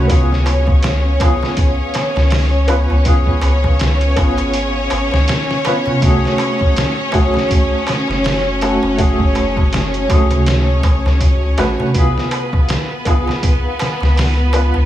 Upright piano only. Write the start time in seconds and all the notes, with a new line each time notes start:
Already playing: A3 F#4 G#4 B4
0.07 B3 F4
0.12 G#4
1.19 B3 F4 G#4
2.67 B3 F4 B4
3.04 B3 F4
3.08 G#4
4.16 B3 F4
4.20 G#4
5.65 B3 F4 B4
6.01 A3 F#4
6.05 G#4
7.12 A3 F#4
7.17 G#4
8.62 A3 F#4 A4
8.97 A3 F#4
9.02 G#4
10.08 A3 F#4
10.12 G#4
11.58 A3 F#4 B4
11.94 B3 F4
11.98 G#4
13.05 B3 F4
13.09 G#4
14.54 B3 F4 B4